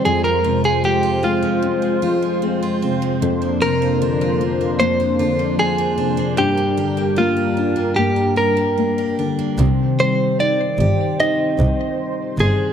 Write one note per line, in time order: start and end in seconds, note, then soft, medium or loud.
0.00 0.13 C3 medium
0.00 3.18 G#3 medium
0.00 0.24 C4 medium
0.00 0.13 D4 medium
0.00 3.18 F4 medium
0.00 0.13 G4 medium
0.00 6.34 C5 medium
0.05 1.61 F2 medium
0.05 3.18 F2 medium
0.05 0.24 G#4 medium
0.24 0.63 G#3 soft
0.24 0.61 A#4 medium
0.44 1.99 C3 soft
0.44 1.03 F4 medium
0.64 1.41 G#3 soft
0.64 0.85 G#4 medium
0.84 2.01 F3 soft
0.84 1.22 C4 medium
0.84 1.25 G4 medium
1.03 2.02 F4 medium
1.23 2.41 G#3 soft
1.23 2.42 C4 soft
1.23 2.78 F4 medium
1.42 1.81 G#3 medium
1.62 3.21 F2 medium
1.62 3.17 C4 medium
1.82 2.21 G#3 soft
2.02 3.18 F3 soft
2.02 2.62 F4 medium
2.22 3.01 G#3 soft
2.42 3.19 G#3 soft
2.42 2.82 C4 medium
2.63 3.61 F4 medium
2.82 3.21 C3 soft
2.82 3.45 C4 medium
3.02 3.30 G#3 medium
3.20 6.34 F2 medium
3.20 4.79 F2 medium
3.20 6.34 F3 medium
3.20 6.35 A#3 medium
3.20 9.54 D4 medium
3.42 3.82 A#3 soft
3.62 5.16 C3 soft
3.62 4.20 F4 medium
3.62 4.79 A#4 medium
3.82 4.60 A#3 medium
4.02 5.18 D3 soft
4.02 4.40 D4 medium
4.21 5.18 F4 medium
4.41 5.57 F3 soft
4.41 5.59 D4 soft
4.61 4.99 A#3 soft
4.80 6.37 F2 medium
4.80 6.34 A#3 medium
4.80 5.55 C5 medium
5.00 5.39 A#3 soft
5.19 6.35 D3 soft
5.19 5.77 F4 medium
5.39 6.17 A#3 soft
5.58 6.35 F3 soft
5.58 5.97 D4 soft
5.58 6.34 G#4 medium
5.78 6.46 F4 medium
5.98 6.37 C3 soft
5.98 7.16 D4 soft
6.17 6.57 A#3 medium
6.37 7.95 G2 medium
6.37 9.54 G2 medium
6.37 9.55 G3 medium
6.37 7.20 G4 medium
6.37 9.55 A#4 medium
6.57 6.96 A#3 soft
6.77 8.33 D3 soft
6.77 7.36 G4 medium
6.97 7.75 A#3 soft
7.16 7.96 A#3 soft
7.16 7.56 D4 medium
7.16 7.93 F4 medium
7.37 8.36 G4 soft
7.57 8.77 D4 soft
7.57 8.36 D4 soft
7.76 8.15 A#3 soft
7.96 9.66 G2 medium
7.96 8.77 A#3 soft
7.96 8.34 G4 medium
8.16 8.56 A#3 soft
8.36 9.55 D4 soft
8.36 8.98 G4 soft
8.36 9.14 A#4 medium
8.57 9.37 A#3 soft
8.78 9.56 A#3 soft
8.78 9.18 D4 soft
8.98 10.80 G4 medium
9.19 9.58 D3 soft
9.19 10.02 D4 soft
9.39 9.67 A#3 soft
9.59 9.67 C2 medium
9.59 12.73 C3 medium
9.59 12.73 D#3 medium
9.59 12.73 C5 medium
9.59 12.73 C6 medium
9.99 11.55 G3 soft
9.99 10.40 C4 soft
9.99 10.40 C5 medium
10.39 10.58 C4 medium
10.39 11.18 D#4 soft
10.39 11.20 D5 medium
10.79 10.87 G1 medium
10.79 12.35 G4 soft
10.79 12.00 G4 soft
11.19 12.73 D#3 soft
11.19 12.73 D#4 soft
11.19 12.43 D#5 medium
11.59 11.67 C2 medium
12.39 12.47 G1 medium
12.39 12.73 D4 medium
12.39 12.73 G#4 medium